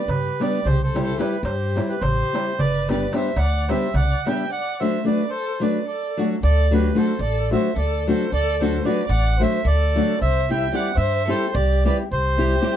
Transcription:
0.08 G2 B4, darbuka tek, darbuka dum
0.12 G4
0.40 G3 B3 D4 G4 B4 D5, darbuka tek
0.65 C2 G4 C5, darbuka dum
0.83 A4 C5
0.94 G3 C4 E4 G4, darbuka tek
1.03 A4 C5
1.18 G3 C4 E4 G4 B4, darbuka tek
1.43 G2 G4 C5, darbuka tek
1.76 G3 C4 E4 G4, darbuka tek
1.89 G4 B4, darbuka tek
2.01 A1 G4 C5, darbuka tek, darbuka dum
2.33 G3 C4 E4 G4, darbuka tek
2.59 G1 B4 D5, darbuka dum
2.89 G3 B3 D4 G4 B4 D5, darbuka tek
3.12 G3 B3 D4 G4 C5 E5, darbuka tek
3.36 D2 D5 F#5, darbuka tek
3.69 G3 B3 D4 G4 C5 E5, darbuka tek
3.82 darbuka tek
3.94 C2 D5 F#5, darbuka tek, darbuka dum
4.26 G3 B3 D4 G4 E5 G5, darbuka tek
4.52 D5 F#5
4.80 F#3 A3 D4 F#4 C5 E5
5.04 F#3 A3 D4 F#4 B4 D5
5.30 A4 C5
5.60 F#3 A3 D4 F#4 B4 D5
5.88 A4 D5
6.17 F#3 A3 D4 F#4
6.43 D2 A4 D5
6.71 F#3 A3 D4 F#4 G4 B4
6.95 F#3 A3 D4 F#4 A4 C5
7.19 A1 A4 D5
7.51 F#3 A3 D4 F#4 C5 E5
7.76 D2 A4 D5
8.07 F#3 A3 D4 F#4 A4 C5
8.32 D2 A4 D5
8.61 F#3 A3 D4 F#4 A4 C5
8.84 F#3 A3 D4 F#4 B4 D5
9.08 A1 D5 F#5
9.40 F#3 A3 D4 F#4 C5 E5
9.65 D2 A4 D5
9.96 F#3 A3 D4 F#4
10.22 C2 C5 E5
10.49 G3 C4 E4 G4 E5 G5
10.73 G3 C4 E4 G4 D5 F#5
10.97 G2 C5 E5
11.27 G3 C4 E4 G4 A4 C5
11.54 C2 G4 D5
11.85 G3 C4 E4 G4 B4 D5
12.11 C2 G4 C5
12.38 G3 C4 E4 G4
12.62 G3 C4 E4 G4

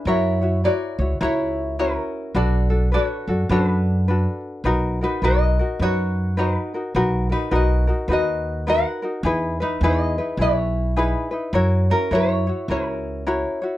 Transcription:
0.05 F#2 E4 F#4 A#4 C#5
0.41 E4 F#4 C#5
0.64 E4 F#4 A#4 C#5 D5
0.99 C#2 E4 F#4 C#5
1.21 C#2 E4 F#4 A#4 C#5
1.79 C#4 E4 F#4 A#4 C#5
2.35 B1 D4 F#4 A4 B4 D5
2.70 D4 F#4 A4
2.92 D4 F#4 A4 B4 D5
3.05 C#5
3.28 F#2 D4 F#4 A4
3.49 F#2 D4 F#4 A4 B4
4.08 D4 F#4 A4 B4
4.64 B1 D#4 F#4 A#4 B4
5.01 D#4 F#4 A#4 B4
5.22 B1 D#4 F#4 A#4 B4 D#5
5.59 D#4 F#4 A#4
5.79 F#2 D#4 F#4 A#4 B4 C#5
6.37 D#4 F#4 A#4 B4
6.74 D#4 F#4 A#4
6.95 B1 D#4 F#4 A#4 B4
7.30 D#4 F#4 A#4 B4
7.51 B1 D#4 F#4 A#4 B4
7.55 F#4 D#5
7.87 D#4 F#4 A#4
8.08 D#2 D#4 F#4 A#4 B4
8.13 D#5
8.67 D#4 F#4 A#4 B4 F#5
9.02 D#4 F#4 A#4
9.23 E2 D#4 E4 G#4 B4
9.60 D#4 E4 B4
9.81 E2 D#4 E4 G#4 B4 D#5
10.18 D#4 E4 B4
10.37 B1 E4 G#4 B4
10.42 C#5
10.96 D#4 E4 G#4 B4
11.31 D#4 E4 B4
11.53 F#2 E4 F#4 A#4 C#5
11.90 C#4 E4 F#4 A#4 C#5
12.11 F#2 E4 F#4 A#4 C#5
12.47 E4 F#4 C#5
12.68 C#2 C#4 E4 F#4 A#4 C#5
13.27 E4 F#4 A#4 C#5
13.62 E4 F#4 C#5

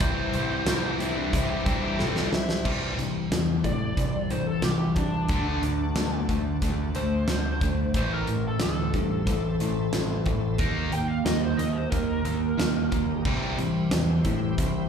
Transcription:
Already playing: C3 E3 G3 C4 E4 G4 C5
0.00 C2 C3 E3 G3 C4 E4 C5, kick, closed hi-hat
0.33 C2, closed hi-hat
0.50 G3 C4 E4 C5
0.66 C2 C3 E3 G3 C4 E4 C5, snare, clap, closed hi-hat, tambourine
0.98 G3 C4 E4 C5, closed hi-hat
1.15 G3 C4 D4 E4 C5
1.32 C2 G3 C4 E4 C5, kick, closed hi-hat
1.49 G4
1.65 G2 C3 E3 G3 C4 E4 C5, kick, closed hi-hat
1.83 G4
1.99 C2 C3 E3 G3 C4 E4 A4 C5, snare, clap
2.16 snare
2.32 G3 C4 E4 C5, snare
2.49 G3 C4 E4 C5, snare
2.65 C2 C3 E3 G3 E4 G4 C5, kick, crash
2.98 C2 C3 E3, closed hi-hat
3.32 E2 C3 E3, snare, closed hi-hat, tambourine
3.64 A2 C3 E3 D5, kick, closed hi-hat
3.97 C2 C3 E3, kick, closed hi-hat
4.30 C2 C3 E3 C5, closed hi-hat
4.47 A4
4.62 C2 C3 E3 G4, snare, closed hi-hat, tambourine
4.95 C2 C3 E3 D4, kick, closed hi-hat
5.28 D2 D3 A3 D4 F#4 A4, kick, closed hi-hat
5.62 D2 D3 A3, closed hi-hat
5.96 D2 D3 A3, snare, closed hi-hat, tambourine
6.29 D2 D3 A3, kick, closed hi-hat
6.62 D2 D3 A3, kick, closed hi-hat
6.95 D2 D3 A3 C5, closed hi-hat
7.28 D2 D3 A3, snare, closed hi-hat, tambourine
7.61 D3 A3, kick, closed hi-hat
7.94 A1 A2 E3 A3 C4 E4 C5 A5, kick, closed hi-hat
8.14 A#4
8.27 A1 A2 E3, closed hi-hat
8.48 A4
8.60 D2 A2 E3 A4, snare, closed hi-hat, tambourine
8.94 G2 A2 E3, kick, closed hi-hat
9.26 A1 A2 E3, kick, closed hi-hat
9.60 A1 A2 E3, closed hi-hat
9.93 A1 A2 E3, snare, closed hi-hat, tambourine
10.26 A1 A2 E3, kick, closed hi-hat
10.58 D#2 D#3 A#3 D#4 G4, kick, closed hi-hat
10.92 D#2 D#3 A#3 G5, closed hi-hat
11.08 F5
11.25 D#2 D#3 A#3 D#5, snare, closed hi-hat, tambourine
11.40 C5
11.57 D#2 D#3 A#3 D#5, closed hi-hat
11.73 C5
11.91 D#2 D#3 A#3 A#4, kick, closed hi-hat
12.25 D#2 D#3 A#3, closed hi-hat
12.58 D#2 D#3 A#3, snare, closed hi-hat, tambourine
12.91 D#3 A#3, kick, closed hi-hat
13.25 C2 C3 E3 G3 C4 E4 G4, kick, crash
13.58 C2 C3 E3, closed hi-hat
13.91 E2 C3 E3, snare, closed hi-hat, tambourine
14.25 A2 C3 E3, kick, closed hi-hat
14.58 C2 C3 E3, kick, closed hi-hat

